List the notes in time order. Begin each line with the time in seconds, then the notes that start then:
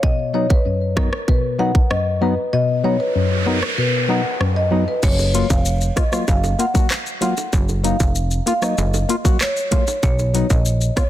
0.03 B2 D#5, kick
0.34 F#3 B3 D#4 C#5
0.50 B4, kick
0.65 F#2
0.96 F#3 B3 D#4 A#4, kick, cross-stick
1.13 cross-stick
1.28 B2 B4, kick
1.59 F#3 B3 D#4 F#5
1.75 kick
1.90 F#2 D#5, cross-stick
2.21 F#3 B3 D#4 B4
2.53 B2 D#5, noise sweep
2.84 F#3 B3 D#4 C#5
3.00 B4
3.15 F#2
3.46 F#3 B3 D#4 A#4
3.63 cross-stick
3.78 B2 B4
4.08 F#3 B3 D#4 F#5
4.40 F#2, cross-stick
4.56 D#5
4.71 F#3 B3 D#4
4.88 B4
5.03 F#1 C#5, kick, crash, high bongo, shaker
5.19 high bongo, shaker
5.34 F#3 A#3 F4, closed hi-hat, shaker
5.50 F1 F5, kick, shaker
5.65 shaker
5.81 shaker
5.96 A#3 F4 D#5, kick, cross-stick, closed hi-hat, high bongo, shaker
6.12 F#3 A#3 F4, cross-stick, shaker
6.28 F#1 F5, kick, high bongo, shaker
6.44 high bongo, shaker
6.59 A#3 F4 F#5, closed hi-hat, shaker
6.74 F#3 A#3 F#4, kick, shaker
6.90 cross-stick, clap, shaker
7.06 shaker
7.21 F#3 A#3 F4 F#5, closed hi-hat, low bongo, shaker
7.37 high bongo, shaker
7.53 F#1, kick, high bongo, shaker
7.69 high bongo, shaker
7.83 F#3 A#3 D#4 F5, closed hi-hat, shaker
8.00 F1, kick, shaker
8.15 shaker
8.31 shaker
8.46 A#3 F4 F5, closed hi-hat, high bongo, shaker
8.62 F#3 A#3 D#4 D#5, cross-stick, shaker
8.78 F#1, high bongo, shaker
8.94 high bongo, shaker
9.09 A#3 F4, closed hi-hat, shaker
9.24 F#3 A#3 F#4, kick, shaker
9.41 C#5, cross-stick, clap, shaker
9.56 shaker
9.71 F#3 A#3 F4 C#5, kick, closed hi-hat, low bongo, shaker
9.87 high bongo, shaker
10.03 B1 C#5, kick, high bongo, shaker
10.19 high bongo, shaker
10.34 F#3 B3 D#4, closed hi-hat, shaker
10.50 A#1 D#5, kick, shaker
10.66 shaker
10.81 shaker
10.96 B3 F4 C#5, kick, cross-stick, closed hi-hat, high bongo, shaker